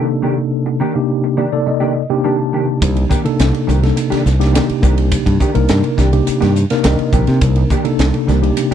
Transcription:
Already playing: tine electric piano C3 A#3 D4 D#4 A4
0.08 muted clean electric guitar stroke
0.22 clean electric guitar D#3 A#3 D4 G4
0.37 muted clean electric guitar stroke
0.66 muted clean electric guitar stroke
0.80 clean electric guitar D#3 A#3 D4 G4
0.95 tine electric piano C3 A#3 D4 D#4 G4, muted clean electric guitar stroke
1.24 muted clean electric guitar stroke
1.37 clean electric guitar D#3 A#3 D4 G4, tine electric piano D5
1.52 tine electric piano C3 A#3 D#4 A4 D5, muted clean electric guitar stroke
1.66 tine electric piano D#5, muted clean electric guitar stroke
1.80 clean electric guitar D#3 A#3 D4 G4
1.95 muted clean electric guitar stroke
2.10 tine electric piano C3 A#3 D4 D#4 G4 G5
2.24 clean electric guitar D#3 A#3 D4 G4, tine electric piano A5
2.39 muted clean electric guitar stroke
2.53 clean electric guitar D#3 A#3 D4 G4
2.68 muted clean electric guitar stroke
2.82 fingered electric bass C2, kick, hi-hat pedal, ride
2.96 muted clean electric guitar stroke, ride
3.10 clean electric guitar D#3 A#3 D4 G4, kick, hi-hat pedal
3.24 tine electric piano C3 A#3 D4 D#4 A4, muted clean electric guitar stroke, ride
3.39 fingered electric bass C2, snare, hi-hat pedal, ride
3.53 muted clean electric guitar stroke, ride
3.67 fingered electric bass C2, clean electric guitar D#3 A#3 D4 G4, hi-hat pedal
3.82 tine electric piano C3 A#3 D4 D#4 A4, muted clean electric guitar stroke, snare, ride
3.96 muted clean electric guitar stroke, hi-hat pedal, ride
4.10 clean electric guitar D#3 A#3 D4 G4, muted fingered electric bass stroke, snare, ride
4.24 fingered electric bass C2, muted clean electric guitar stroke, snare, hi-hat pedal
4.40 tine electric piano C3 A#3 D4 D#4 G4, snare, ride
4.53 clean electric guitar D#3 A#3 D4 G4, snare, hi-hat pedal, ride
4.67 muted clean electric guitar stroke, muted fingered electric bass stroke, ride
4.82 fingered electric bass C2, clean electric guitar D#3 A#3 D4 G4, kick, hi-hat pedal
4.97 muted clean electric guitar stroke, ride
5.12 kick, hi-hat pedal, ride
5.26 fingered electric bass G2, muted clean electric guitar stroke, kick, ride
5.40 clean electric guitar D#3 A#3 D4 G4, kick, hi-hat pedal
5.55 fingered electric bass C2, tine electric piano C3 A#3 D4 D#4 A#4, muted clean electric guitar stroke, ride
5.68 fingered electric bass G2, snare, hi-hat pedal, ride
5.83 muted clean electric guitar stroke, ride
5.97 fingered electric bass C2, clean electric guitar D#3 A#3 D4 G4, kick, snare, hi-hat pedal
6.13 tine electric piano C3 A#3 D4 D#4 G4, muted clean electric guitar stroke, ride
6.27 muted clean electric guitar stroke, muted fingered electric bass stroke, hi-hat pedal, ride
6.41 fingered electric bass G2, clean electric guitar D#3 A#3 D4 G4, snare, ride
6.55 muted clean electric guitar stroke, hi-hat pedal
6.70 tine electric piano C3 A#3 D4 D#4 A#4, snare, ride
6.83 fingered electric bass C2, clean electric guitar D#3 A#3 D4 G4, tine electric piano D#5, snare, hi-hat pedal, ride
6.98 muted clean electric guitar stroke, muted fingered electric bass stroke, ride
7.12 fingered electric bass A#1, clean electric guitar D#3 A#3 D4 G4, tine electric piano G5, kick, hi-hat pedal
7.27 fingered electric bass C3, muted clean electric guitar stroke, snare, ride
7.41 fingered electric bass C2, kick, hi-hat pedal, ride
7.56 muted clean electric guitar stroke, ride
7.70 clean electric guitar D#3 A#3 D4 G4, kick, hi-hat pedal
7.85 tine electric piano C3 A#3 D4 D#4 A4, muted clean electric guitar stroke, ride
7.99 fingered electric bass C2, snare, hi-hat pedal, ride
8.13 muted clean electric guitar stroke, ride
8.27 fingered electric bass C2, clean electric guitar D#3 A#3 D4 G4, snare, hi-hat pedal
8.42 tine electric piano C3 A#3 D4 D#4 G4, muted clean electric guitar stroke, ride
8.57 muted clean electric guitar stroke, hi-hat pedal, ride

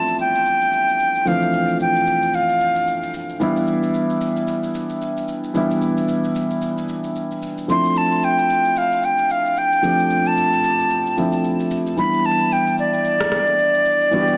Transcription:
Already playing: grand piano F3 A3 C4 D4 E4, flute A5
0.08 shaker
0.19 flute G5, shaker
0.35 shaker
0.46 shaker
0.61 shaker
0.73 shaker
0.88 shaker
0.99 shaker
1.15 shaker
1.25 grand piano E3 F3 A3 C4 D4, flute F5, shaker
1.42 shaker
1.53 shaker
1.69 shaker
1.80 flute G5, shaker
1.96 shaker
2.07 shaker
2.22 shaker
2.33 flute F5, shaker
2.49 shaker
2.60 shaker
2.75 shaker
2.87 shaker
3.03 shaker
3.14 shaker
3.30 shaker
3.40 grand piano E3 G3 B3 D4 E4, shaker
3.57 shaker
3.67 shaker
3.83 shaker
3.94 shaker
4.10 shaker
4.21 shaker
4.36 shaker
4.48 shaker
4.64 shaker
4.75 shaker
4.90 shaker
5.02 shaker
5.17 shaker
5.28 shaker
5.44 shaker
5.54 grand piano E3 G3 B3 D4 E4, shaker
5.71 shaker
5.82 shaker
5.97 shaker
6.08 shaker
6.24 shaker
6.35 shaker
6.51 shaker
6.62 shaker
6.78 shaker
6.89 shaker
7.04 shaker
7.16 shaker
7.31 shaker
7.42 shaker
7.58 shaker
7.68 grand piano F3 A3 C4 D4 E4, flute C6, shaker
7.85 shaker
7.96 flute A5, shaker
8.12 shaker
8.23 flute G5, shaker
8.39 shaker
8.50 shaker
8.65 shaker
8.76 flute F5, shaker
8.92 shaker
9.03 flute G5, shaker
9.18 shaker
9.30 flute F5, shaker
9.46 shaker
9.57 flute G5, shaker
9.72 shaker
9.82 grand piano F3 A3 C4 D4 G4, shaker
9.99 shaker
10.10 shaker
10.26 flute A5, shaker
10.37 shaker
10.53 shaker
10.64 shaker
10.79 shaker
10.90 shaker
11.06 shaker
11.17 grand piano F3 A3 C4 D4 E4, shaker
11.33 shaker
11.44 shaker
11.60 shaker
11.71 shaker
11.87 shaker
11.97 grand piano E3 G3 B3 D4 E4, flute B5, shaker
12.14 shaker
12.24 flute A5, shaker
12.40 shaker
12.51 flute G5, shaker
12.67 shaker
12.78 flute D5, shaker
12.94 shaker
13.05 shaker
13.21 cross-stick, shaker
13.32 cross-stick, shaker
13.47 shaker
13.59 shaker
13.74 shaker
13.85 shaker
14.01 shaker
14.11 grand piano E3 G3 B3 D4 F#4, shaker
14.21 grand piano G4
14.28 shaker

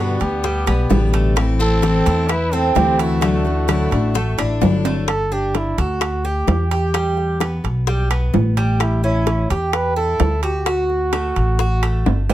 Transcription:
Already playing: upright bass G2, steel-string acoustic guitar B2 D3 G3, trumpet B3, cuban tres D4, muted trumpet F#4
0.00 steel-string acoustic guitar B3 G4
0.20 upright bass D2, steel-string acoustic guitar G3 B3 G4, trumpet B3, muted trumpet G4, high bongo, high timbale
0.43 cuban tres G3, muted steel-string acoustic guitar stroke, high bongo
0.66 upright bass B1, steel-string acoustic guitar G3 B3 G4, cuban tres B3, high bongo, high timbale, claves
0.89 upright bass A1, steel-string acoustic guitar B2 D3 G3 B3 G4, high bongo, low bongo, low timbale
1.14 cuban tres A3, high timbale
1.36 steel-string acoustic guitar E3 A3 C4 E4, high bongo, high timbale, claves
1.59 steel-string acoustic guitar A3 C4 E4, trumpet C4, cuban tres E4, muted trumpet A4, high bongo
1.82 steel-string acoustic guitar E3 A3 C4 E4, cuban tres C4, high bongo, high timbale, low timbale
2.05 upright bass E2, steel-string acoustic guitar C4 E4, cuban tres E4, high bongo, high timbale
2.28 trumpet E4, muted trumpet B4, muted steel-string acoustic guitar stroke, high bongo, high timbale, claves
2.52 steel-string acoustic guitar A3 C4 E4, trumpet C4, cuban tres C4, muted trumpet A4, high bongo
2.75 upright bass D2, steel-string acoustic guitar E3 A3 C4 E4, trumpet C4, muted trumpet G4, high bongo, low bongo, high timbale, low timbale
2.99 trumpet A3, cuban tres E4, muted trumpet F#4, high timbale
3.21 steel-string acoustic guitar D3 F#3 A3 D4 E4, cuban tres A3, high bongo, high timbale, claves
3.45 steel-string acoustic guitar A3 D4 E4, high bongo
3.68 steel-string acoustic guitar D3 F#3 A3 D4 E4, cuban tres E4, high bongo, high timbale, low timbale, claves
3.91 upright bass A1, steel-string acoustic guitar A3 D4 E4, high bongo, high timbale
4.14 cuban tres A3, muted steel-string acoustic guitar stroke, high bongo
4.38 upright bass A1, steel-string acoustic guitar A3 D4 E4, cuban tres D4, high bongo, high timbale, claves
4.61 upright bass G1, steel-string acoustic guitar D3 F#3 A3 D4 E4, high bongo, low bongo, low timbale
4.85 cuban tres A3, high timbale
5.08 muted trumpet A4, high bongo, high timbale, claves
5.32 cuban tres D4, muted trumpet G4, high bongo
5.55 muted trumpet E4, high bongo, high timbale, low timbale
5.78 upright bass D2, muted trumpet F#4, cuban tres A4, high bongo, high timbale
6.01 high bongo, high timbale, claves
6.24 cuban tres G4, muted trumpet G4, high bongo
6.47 upright bass E2, high bongo, low bongo, high timbale, low timbale
6.71 cuban tres G4, muted trumpet G4, high timbale
6.94 cuban tres G3, high bongo, high timbale, claves
7.17 high bongo
7.40 cuban tres B3, high bongo, high timbale, low timbale, claves
7.64 upright bass B1, high bongo, high timbale
7.87 cuban tres G3, high bongo
8.10 cuban tres B3, high bongo, high timbale, claves
8.34 upright bass A1, high bongo, low bongo, low timbale
8.57 cuban tres G3, high timbale
8.80 muted trumpet E4, high bongo, high timbale, claves
9.03 cuban tres C#4, muted trumpet E4, high bongo
9.27 high bongo, high timbale, low timbale
9.50 upright bass E2, muted trumpet G4, cuban tres G4, high bongo, high timbale
9.73 muted trumpet B4, high bongo, high timbale, claves
9.96 cuban tres E4, muted trumpet A4, high bongo
10.20 upright bass D2, high bongo, low bongo, high timbale, low timbale
10.43 cuban tres F#4, muted trumpet G4, high timbale
10.66 cuban tres F#4, muted trumpet F#4, high bongo, high timbale, claves
10.90 high bongo
11.13 cuban tres A3, high bongo, high timbale, low timbale, claves
11.36 upright bass A1, high bongo, high timbale
11.59 cuban tres F#4, high bongo
11.83 cuban tres A3, high bongo, high timbale, claves
12.06 upright bass G1, high bongo, low bongo, high timbale
12.29 cuban tres G3, low timbale

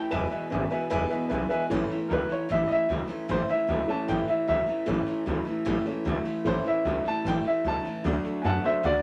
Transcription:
Already playing: steel-string acoustic guitar A3 C#4 E4, clean electric guitar G5
0.11 upright bass E1, steel-string acoustic guitar E2 B2 E3 G#3 B3 E4, clean electric guitar E2 B2 G#5, upright piano B4 E5 G#5
0.30 clean electric guitar E2 B2, steel-string acoustic guitar E3 G#3 B3 E4, upright piano B4 E5 G#5, muted upright bass stroke
0.50 upright bass G#1, clean electric guitar E2 C#3, steel-string acoustic guitar E3 G#3 B3 E4, upright piano B4 E5 G#5
0.70 clean electric guitar E2 B2, steel-string acoustic guitar E3 G#3 B3 E4, upright piano B4 E5 G#5, muted upright bass stroke
0.90 upright bass E1, steel-string acoustic guitar E2 B2 E3 G#3 B3 E4, clean electric guitar E2 B2, upright piano B4 E5 G#5
1.10 clean electric guitar E2 B2, steel-string acoustic guitar E3 G#3 B3 E4, upright piano B4 E5 G#5, muted upright bass stroke
1.29 upright bass B1, clean electric guitar E2 C#3, steel-string acoustic guitar E3 G#3 B3 E4, upright piano B4 E5 G#5
1.49 clean electric guitar E2 B2, steel-string acoustic guitar E3 G#3 B3 E4, upright piano B4 E5 G#5, muted upright bass stroke
1.70 upright bass A1, clean electric guitar A2 E3, steel-string acoustic guitar A2 E3 A3 C#4 E4, upright piano E3 A3 C#4
1.90 clean electric guitar A2 E3, steel-string acoustic guitar A3 C#4 E4, muted upright bass stroke
2.09 upright bass C#2, clean electric guitar A2 F#3, steel-string acoustic guitar E3 A3 C#4, upright piano A#4
2.13 steel-string acoustic guitar E4, upright piano B4
2.29 clean electric guitar A2 E3, steel-string acoustic guitar A3 C#4 E4, upright piano C#5, muted upright bass stroke
2.49 upright bass A1, steel-string acoustic guitar A2 E3 A3 C#4 E4, clean electric guitar A2 E3, upright piano E5
2.68 clean electric guitar A2 E3, steel-string acoustic guitar A3 C#4 E4, upright piano D#5, muted upright bass stroke
2.72 upright piano E5
2.89 upright bass C#2, clean electric guitar A2 F#3, steel-string acoustic guitar E3 A3 C#4 E4
3.08 clean electric guitar A2 E3, steel-string acoustic guitar A3 C#4 E4, muted upright bass stroke
3.28 upright bass A1, steel-string acoustic guitar A2 E3 A3 C#4 E4, clean electric guitar A2 E3, upright piano C5
3.48 clean electric guitar A2 E3, steel-string acoustic guitar A3 C#4 E4, upright piano E5, muted upright bass stroke
3.67 upright bass C#2, clean electric guitar A2 F#3, steel-string acoustic guitar E3 A3 C#4 E4
3.88 clean electric guitar A2 E3, upright piano E3 A3 C#4 A5, steel-string acoustic guitar A3 C#4 E4, muted upright bass stroke
4.08 upright bass A1, clean electric guitar A2 E3, steel-string acoustic guitar A2 E3 A3 C#4 E4, upright piano G5
4.28 clean electric guitar A2 E3, steel-string acoustic guitar A3 C#4 E4, upright piano E5, muted upright bass stroke
4.47 upright bass C#2, clean electric guitar A2 F#3, steel-string acoustic guitar E3 A3 C#4 E4, upright piano E5
4.66 clean electric guitar A2 E3, steel-string acoustic guitar A3 C#4 E4, muted upright bass stroke
4.86 upright bass A1, steel-string acoustic guitar A2 E3 A3 C#4 E4, clean electric guitar A2 E3, upright piano E3 A3 C#4
5.06 clean electric guitar A2 E3, steel-string acoustic guitar A3 C#4 E4, muted upright bass stroke
5.26 upright bass C#2, clean electric guitar A2 F#3, steel-string acoustic guitar E3 A3 C#4 E4
5.45 clean electric guitar A2 E3, steel-string acoustic guitar A3 C#4 E4, muted upright bass stroke
5.65 upright bass A1, steel-string acoustic guitar A2 E3 A3 C#4 E4, clean electric guitar A2 E3
5.86 clean electric guitar A2 E3, upright piano E3 A3 C#4, steel-string acoustic guitar A3 C#4 E4, muted upright bass stroke
6.05 upright bass C#2, clean electric guitar A2 F#3, steel-string acoustic guitar E3 A3 C#4 E4
6.25 clean electric guitar A2 E3, steel-string acoustic guitar A3 C#4 E4, muted upright bass stroke
6.45 upright bass A1, clean electric guitar A2 E3, steel-string acoustic guitar A2 E3 A3 C#4 E4, upright piano E3 A3 C#4 C5
6.64 clean electric guitar A2 E3, steel-string acoustic guitar A3 C#4 E4, upright piano E5, muted upright bass stroke
6.85 upright bass C#2, clean electric guitar A2 F#3, steel-string acoustic guitar E3 A3 C#4 E4
7.04 clean electric guitar A2 E3, steel-string acoustic guitar A3 C#4 E4, upright piano A5, muted upright bass stroke
7.25 upright bass A1, clean electric guitar A2 E3, steel-string acoustic guitar A2 E3 A3 C#4 E4, upright piano G5
7.44 clean electric guitar A2 E3, steel-string acoustic guitar A3 C#4 E4, upright piano E5, muted upright bass stroke
7.64 upright bass C#2, clean electric guitar A2 F#3, steel-string acoustic guitar E3 A3 C#4 E4, upright piano A5
7.83 clean electric guitar A2 E3, steel-string acoustic guitar A3 C#4 E4, muted upright bass stroke
8.04 upright bass D2, clean electric guitar D3 A3, steel-string acoustic guitar D3 A3 D4 F#4, upright piano F#3 A3 D4
8.24 clean electric guitar D3 A3, steel-string acoustic guitar A3 D4 F#4, muted upright bass stroke
8.42 upright bass F#2, clean electric guitar D3 B3, steel-string acoustic guitar D3 A3 D4, upright piano F#5 G#5
8.46 steel-string acoustic guitar F#4, upright piano A5
8.64 clean electric guitar D3 A3, upright piano F#3 A3 D4 C5 E5, steel-string acoustic guitar A3 D4 F#4, muted upright bass stroke
8.83 upright bass D2, clean electric guitar D3 A3, steel-string acoustic guitar D3 A3 D4 F#4, upright piano F#4 D5

